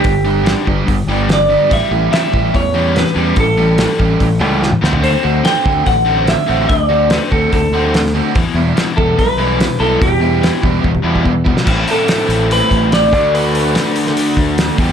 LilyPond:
<<
  \new Staff \with { instrumentName = "Clean electric guitar" } { \time 4/4 \key d \mixolydian \tempo 4 = 145 g'4. r4. d''4 | e''4 e''4 cis''4 b'4 | a'2. r4 | c''4 g''4 fis''4 e''4 |
d''4 b'8 a'8 a'4. r8 | r4. a'8 b'4. a'8 | g'2. r4 | r8 a'4. b'4 d''4 |
b'2 r2 | }
  \new Staff \with { instrumentName = "Overdriven electric guitar" } { \time 4/4 \key d \mixolydian <g b d' g'>8 <g b d' g'>8 r8 <g b d' g'>8 r8 <g b d' g'>8 r8 <g b d' g'>8 | r8 <e g cis' g'>8 r8 <e g cis' g'>8 r8 <e g cis' g'>8 r8 <e g cis' g'>8 | r8 <e g cis' g'>8 r8 <e g cis' g'>8 r8 <e g cis' g'>8 r8 <d a c' fis'>8 | r8 <d a c' fis'>8 r8 <d a c' fis'>8 r8 <d a c' fis'>8 r8 <d a c' fis'>8 |
r8 <d a c' fis'>8 r8 <d a c' fis'>8 r8 <d a c' fis'>8 r8 <d a c' fis'>8 | r8 <e g b e'>8 r8 <e g b e'>8 r8 <e g b e'>8 r8 <e g b e'>8 | r8 <e g b e'>8 r8 <e g b e'>8 r8 <e g b e'>8 r8 <e g b e'>8 | <a, e a c' e'>2.~ <a, e a c' e'>8 <d a d' fis'>8~ |
<d a d' fis'>2.~ <d a d' fis'>8 <e, b, e g b g'>8 | }
  \new Staff \with { instrumentName = "Overdriven electric guitar" } { \clef bass \time 4/4 \key d \mixolydian <g, d>8 <g, d>8 <g, d g>8 <g, d>8 <g, d>8 <g, d g>8 <g, d>8 <g, d>8 | <a, e g>8 <a, e>8 <a, e g>8 <a, e>8 <a, e>8 <a, e g>8 <a, e>8 <a, e g>8 | <a, e>8 <a, e>8 <a, e g>8 <a, e>8 <a, e>8 <a, e g>8 <a, e>8 <d a c'>8 | <d a c'>8 <d a>8 <d a c'>8 <d a>8 <d a>8 <d a c'>8 <d a>8 <d a c'>8 |
<d a>8 <d a>8 <d a c'>8 <d a>8 <d a>8 <d a c'>8 <d a>8 <d a>8 | <e, b, e>8 <e, b,>8 <e, b, e>8 <e, b,>8 <e, b,>8 <e, b, e>8 <e, b,>8 <e, b, e>8 | <e, b,>8 <e, b,>8 <e, b, e>8 <e, b,>8 <e, b,>8 <e, b, e>8 <e, b,>8 <e, b,>8 | <a, e a c' e'>4. <a, e a c' e'>2 <d a d' fis'>8~ |
<d a d' fis'>4 <d a d' fis'>2~ <d a d' fis'>8 <e, b, e g b g'>8 | }
  \new Staff \with { instrumentName = "Fingered electric bass" } { \clef bass \time 4/4 \key d \mixolydian g,,4. g,,8 g,,8 g,,4. | a,,16 r16 a,,8 r8 a,,8 e,4. e,8 | a,,4. a,,8 a,,8 cis,4 d,8~ | d,8 d,8 r8 d,8 a,,4. a,,8 |
d,4. d,8 d,8 d,4. | e,16 r16 e,8 r8 e,8 b,,4. b,,8 | e,4. e,8 e,8 e,4. | a,,8 r4 a,,4 a,,4 d,8~ |
d,4. r4 d,4 e,8 | }
  \new DrumStaff \with { instrumentName = "Drums" } \drummode { \time 4/4 <hho bd>4 <hho sn>8 bd8 <hho bd>4 <hho sn>4 | <hho bd>4 <hho sn>8 bd8 <hho bd>4 <hho sn>16 sn8. | <hho bd>4 <hho sn>8 bd8 <hho bd>4 sn16 toml16 sn16 tomfh16 | hho4 <hho sn>8 bd8 <hho bd>4 <hho sn>4 |
<hho bd>4 <hho sn>8 bd8 <hho bd>4 <hho sn>16 sn8. | <hho bd>4 <hho sn>8 bd8 <hho bd>4 <hho sn>4 | <hho bd>4 <hho sn>8 bd8 bd16 bd8 bd16 bd8 bd16 sn16 | <cymc bd>8 hho8 <hho sn>8 hho8 hho8 <hho bd>8 <hho sn>8 <hho bd>8 |
hho8 hho8 <hho sn>8 hho16 sn16 hho8 <hho bd>8 <hho sn>8 <hho bd>8 | }
>>